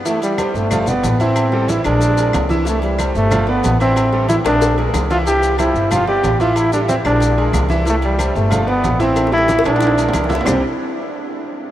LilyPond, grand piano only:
\new Staff \with { instrumentName = "Grand piano" } { \time 4/4 \key c \major \tempo 4 = 185 <e e' e''>4 <g g' c''>4 <f f' f''>8 <b b' d''>4 <e e' e''>8~ | <e e' e''>8 <g g' a'>8 <e e' e''>8 <aes aes' bes'>4 <aes aes' bes'>4 <e e' e''>8 | <e e' e''>4 <g g' c''>4 <f f' f''>8 <b b' d''>4 <e e' e''>8~ | <e e' e''>8 <g g' a'>8 <e e' e''>8 <aes aes' bes'>4 <aes aes' bes'>4 <e e' e''>8 |
<e e' e''>4 <g g' c''>4 <f f' f''>8 <b b' d''>4 <e e' e''>8~ | <e e' e''>8 <g g' a'>8 <e e' e''>8 <aes aes' bes'>4 <aes aes' bes'>4 <e e' e''>8 | <e e' e''>4 <g g' c''>4 <f f' f''>8 <b b' d''>4 <e e' e''>8~ | <e e' e''>8 <g g' a'>8 <e e' e''>8 <aes aes' bes'>4 <aes aes' bes'>4 <e e' e''>8 |
<c g c' d' e' g'>8 r2. r8 | }